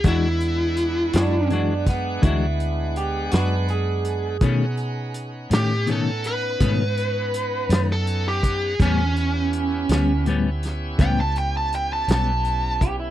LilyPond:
<<
  \new Staff \with { instrumentName = "Lead electric guitar" } { \time 12/8 \key e \mixolydian \tempo 4. = 55 e'2 r1 | r4. g'8 a'8 b'2~ b'16 a'8 g'8. | cis'2 r4 g''16 a''16 g''16 a''16 g''16 a''16 a''4 r8 | }
  \new Staff \with { instrumentName = "Clean electric guitar" } { \time 12/8 \key e \mixolydian r4. d'4 b8 e'4 g'8 b'8 gis'4~ | gis'4~ gis'16 r1 r8. | r1 r4. g'16 e'16 | }
  \new Staff \with { instrumentName = "Tonewheel organ" } { \time 12/8 \key e \mixolydian <gis b d' fis''>1. | <b cis' dis' fis''>1. | <d f' gis' c''>8 <b cis' e' g'>1~ <b cis' e' g'>4. | }
  \new Staff \with { instrumentName = "Clean electric guitar" } { \time 12/8 \key e \mixolydian <e gis d' fis'>8 r4 <gis d' fis'>8 <e gis d' fis'>8 r8 <e gis d' fis'>8 r4 <gis d' fis'>8 r4 | <b, dis a cis'>8 r4 <dis a cis'>8 <b, dis a cis'>8 r8 <b, dis a cis'>8 r4 <dis a cis'>8 r4 | <a, g b cis'>8 r4 <g b cis'>8 <a, g b cis'>8 r8 <a, g b cis'>8 r4 <g b cis'>8 r4 | }
  \new Staff \with { instrumentName = "Fingered electric bass" } { \clef bass \time 12/8 \key e \mixolydian e,4. fis,4. d,4. fis,4. | b,4. a,4. gis,4. fis,4. | e,4. d,4. cis,4. b,,4. | }
  \new DrumStaff \with { instrumentName = "Drums" } \drummode { \time 12/8 <hh bd>8 hh8 hh8 <hh sn>8 hh8 <hh bd sn>8 <hh bd>8 hh8 hh8 <hh sn>8 hh8 hh8 | <hh bd>8 hh8 hh8 <hh sn>8 hh8 hh8 <hh bd>8 hh8 hh8 <hh sn>8 hh8 <hh bd>8 | <hh bd>8 hh8 hh8 <hh sn>8 hh8 <hh sn>8 <hh bd>8 hh8 hh8 <hh sn>8 hh8 <hh bd>8 | }
>>